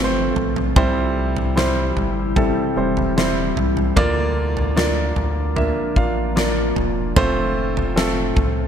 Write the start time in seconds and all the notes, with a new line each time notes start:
Already playing: G1 C3 F3 A3 C4 F4 G4 A4 B4 C5
0.04 C5
0.36 A#1, floor tom
0.56 floor tom
0.76 C2 C3 E3 G3 C4 E4 G4 C5, kick, floor tom
1.37 floor tom
1.56 G3 C4 E4 C5, snare
1.96 G1, floor tom
2.36 G3 C4 E4 A4, kick, floor tom
2.76 E1 G3 C4 E4 C5
2.97 floor tom
3.17 G3 C4 E4 C5, snare
3.56 C2, floor tom
3.77 floor tom
3.95 D2 D3 F3 A#3 D4 F4 D5, kick, floor tom
4.57 floor tom
4.76 A#3 D4 F4 D5, snare
5.16 D2, floor tom
5.56 A#3 D4 F4 E5, floor tom
5.96 A1 A#3 D4 F4 F5, kick
6.36 A#3 D4 F4 D5, snare
6.76 E1, floor tom
7.16 F1 A2 C3 A3 C4 F4 C5, kick, floor tom
7.77 floor tom
7.96 A3 C4 F4 A4, snare
8.36 C2, kick, floor tom